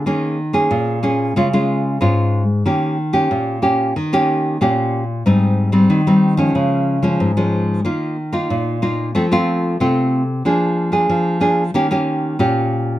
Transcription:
\new Staff \with { instrumentName = "Nylon-string guitar" } { \time 4/4 \key ees \mixolydian \tempo 4 = 92 << { <bes des' aes'>8 r16 <bes des' aes'>8. <bes des' aes'>8 <aes des' f'>16 <aes des' f'>8. <aes des' f'>8. r16 | <bes des' g'>8 r16 <bes des' g'>8. <bes des' g'>8 r16 <bes des' g'>8. <bes des' g'>8. r16 | <g c' ees'>8. <g c' ees'>8 <g c' ees'>8 <f aes des'>4 <f aes des'>8 <f aes des'>8. | <bes ees' f'>8 r16 <bes ees' f'>8. <bes ees' f'>8 <a c' f'>16 <a c' f'>8. <a c' f'>8. r16 |
<bes d' aes'>8. <bes d' aes'>8. <bes d' aes'>16 r16 <bes des' g'>16 <bes des' g'>8. <bes des' g'>4 | } \\ { ees4 bes,4 des4 aes,4 | ees4 bes,4 ees4 bes,4 | aes,4 ees4 des4 aes,4 | ees4 bes,4 f4 c4 |
f4 f4 ees4 bes,4 | } >> }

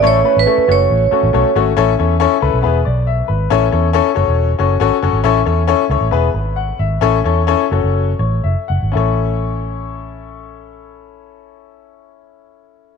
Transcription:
<<
  \new Staff \with { instrumentName = "Vibraphone" } { \time 4/4 \key a \major \tempo 4 = 136 cis''8. b'8. cis''2 r8 | r1 | r1 | r1 |
r1 | r1 | r1 | }
  \new Staff \with { instrumentName = "Upright piano" } { \time 4/4 \key a \major << { r1 | r2 r8 d''8 e''8 b'8~ | b'8 r2. r8 | r2 r8 b'8 fis''8 e''8~ |
e''8 r2 cis''8 e''8 fis''8~ | fis''8 r2. r8 | r1 | } \\ { <a cis' e' a' cis''>8 <a cis' e' a' b'>8 <a cis' e' a' cis''>8 <a cis' fis' a' cis''>4 <a cis' fis' a' cis''>8 <a cis' fis' a' cis''>8 <a cis' fis' a' cis''>8 | <cis' e' a' cis''>8 <cis' e' a' cis''>8 <cis' e' a' cis''>8 <cis' e' a' b'>8 <b e' gis' b'>8 r4. | <cis' e' a' cis''>8 <cis' e' a' cis''>8 <cis' e' a' cis''>8 <cis' fis' a' cis''>4 <cis' fis' a' cis''>8 <cis' fis' a' cis''>8 <cis' fis' a' cis''>8 | <cis' e' a' cis''>8 <cis' e' a' cis''>8 <cis' e' a' cis''>8 <cis' e' a' cis''>8 <b e' gis' b'>8 r4. |
<cis' e' a' cis''>8 <cis' e' a' cis''>8 <cis' e' a' cis''>8 <cis' fis' a' cis''>4 r4. | <cis' e' a' cis''>1~ | <cis' e' a' cis''>1 | } >> }
  \new Staff \with { instrumentName = "Fingered electric bass" } { \clef bass \time 4/4 \key a \major a,,8 r16 a,,16 r8 fis,,8 a,,8 r16 a,,16 b,,16 r16 gis,,8 | a,,8 e,8. r16 cis,16 b,,16 e,,8 b,,4 gis,,8 | a,,8 e,8. r16 fis,,16 e,,8. fis,,8 gis,,16 r16 fis,,16 gis,,16 | a,,8 e,8. r16 cis,16 a,,16 e,,8 gis,,4 gis,,8 |
a,,8 e,8. r16 fis,,16 fis,,8. a,,8 fis,,16 r16 fis,,16 gis,,16 | a,,1~ | a,,1 | }
>>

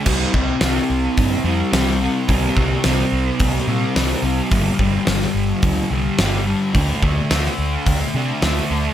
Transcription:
<<
  \new Staff \with { instrumentName = "Distorted electric guitar" } { \clef bass \time 4/4 \key c \mixolydian \tempo 4 = 108 <c g c'>8 <g c'>8 <c g c'>4. <g c'>8 <c g c'>8 <g c'>8 | <c g c'>8 <g c'>8 <c g c'>4. <g c'>8 <c g c'>8 <g c'>8 | <g, d g>8 <d g>8 <g, d g>4. <d g>8 <g, d g>8 <d g>8 | <d a d'>8 <a d'>8 <d a d'>4. <a d'>8 <d a d'>8 <a d'>8 | }
  \new Staff \with { instrumentName = "Fingered electric bass" } { \clef bass \time 4/4 \key c \mixolydian c,8 c,8 c,8 c,8 g,8 f,8 c,4 | c,8 c,8 c,8 c,8 c,8 bes,8 c,8 c,8 | g,,8 g,,8 g,,8 g,,8 d,8 c,8 g,,4 | d,8 d,8 d,8 d,8 d,8 c8 d,8 d,8 | }
  \new DrumStaff \with { instrumentName = "Drums" } \drummode { \time 4/4 <cymc bd>8 bd8 <hho sn>4 <hho bd>4 <hho sn>4 | <hho bd>8 bd8 <hho sn>4 <hho bd>4 <hho sn>4 | <hho bd>8 bd8 <hho sn>16 sn8. <hho bd>4 <hho sn>4 | <hho bd>8 bd8 <hho sn>16 sn8. <hho bd>4 <hho sn>4 | }
>>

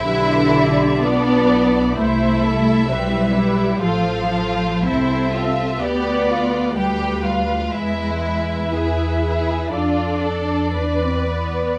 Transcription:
<<
  \new Staff \with { instrumentName = "Violin section" } { \time 4/4 \key e \phrygian \tempo 4 = 62 e''4 d''4 e''2 | f''4 e''4 d''4 g''8 f''8 | e''8 e''4. d''2 | }
  \new Staff \with { instrumentName = "Viola section" } { \time 4/4 \key e \phrygian << { b'8 d''4. c''8 a'8 b'4 | c''4 c''8 e''8 d''4 b'4 | b'2 d''4 d''4 | } \\ { g'4 f'8 e'4. e'8 g'8 | a'4 a'4 b'2 | b'4 gis'8 gis'8 a'8 a'8 b'4 | } >> }
  \new Staff \with { instrumentName = "Violin section" } { \time 4/4 \key e \phrygian e'4 d'4 e'4 c'8 e'8 | f'8 f'8 e'8 f'8 g'8 f'8 g'8 f'8 | e'4 gis'8 gis'8 f'8 a'8 b'4 | }
  \new Staff \with { instrumentName = "Cello section" } { \time 4/4 \key e \phrygian d4 b4 a4 g4 | f4 c'4 b4 g4 | gis4 e'4 d'4~ d'16 c'16 b8 | }
  \new Staff \with { instrumentName = "Double bass section" } { \clef bass \time 4/4 \key e \phrygian b,,2 c,4 b,,4 | a,,4 c,4 d,2 | e,2 f,4 e,4 | }
>>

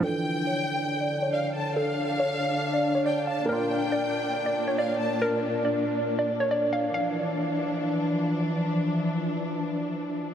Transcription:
<<
  \new Staff \with { instrumentName = "Violin section" } { \time 4/4 \key d \minor \tempo 4 = 139 g''2. f''8 a''8 | f''2. g''8 a''8 | g''2. f''8 a''8 | r1 |
r1 | r1 | }
  \new Staff \with { instrumentName = "Synth pluck" } { \time 4/4 \key d \minor a'4 cis''4~ cis''16 d''8 cis''16 d''4 | a'4 cis''4~ cis''16 d''8 cis''16 d''8 f''8 | bes'4 d''4~ d''16 d''8 cis''16 d''4 | bes'4 d''4~ d''16 d''8 cis''16 d''8 f''8 |
f''2. r4 | r1 | }
  \new Staff \with { instrumentName = "Felt piano" } { \time 4/4 \key d \minor <e f d'>1~ | <e f d'>1 | <bes d' f'>1~ | <bes d' f'>1 |
r1 | r1 | }
  \new Staff \with { instrumentName = "String section" } { \clef bass \time 4/4 \key d \minor << { d'1~ | d'1~ | d'1~ | d'1 |
<e f d'>1~ | <e f d'>1 | } \\ { d1~ | d1 | bes,1~ | bes,1 |
r1 | r1 | } >> }
>>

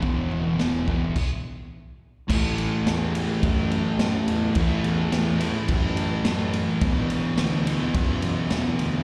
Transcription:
<<
  \new Staff \with { instrumentName = "Distorted electric guitar" } { \clef bass \time 4/4 \key e \dorian \tempo 4 = 106 <e, b, e>8. <b, e>16 <e, b, e>8 <e, b, e>8 r2 | \key e \mixolydian <a, e a>4. <a, e a>2~ <a, e a>8 | <a, e a>4. <a, e a>2~ <a, e a>8 | <e, b, e>4. <e, b, e>2~ <e, b, e>8 | }
  \new Staff \with { instrumentName = "Fingered electric bass" } { \clef bass \time 4/4 \key e \dorian e,,4 e,,4 r2 | \key e \mixolydian a,,4 e,4 fis,4 fis,8 e,8 | a,,8 e,8 e,4 fis,4 fis,4 | gis,,4 d,4 fis,4 e,8 d,8 | }
  \new DrumStaff \with { instrumentName = "Drums" } \drummode { \time 4/4 <bd tomfh>8 tomfh8 <sn tomfh>8 <bd tomfh>8 <cymc bd>4 r4 | <cymc bd>8 cymr8 <cymr sn>8 cymr8 <bd cymr>8 cymr8 <cymr sn>8 cymr8 | <bd cymr>8 cymr8 <cymr sn>8 cymr8 <bd cymr>8 cymr8 <cymr sn>8 cymr8 | <bd cymr>8 cymr8 <cymr sn>8 cymr8 <bd cymr>8 cymr8 <cymr sn>8 cymr8 | }
>>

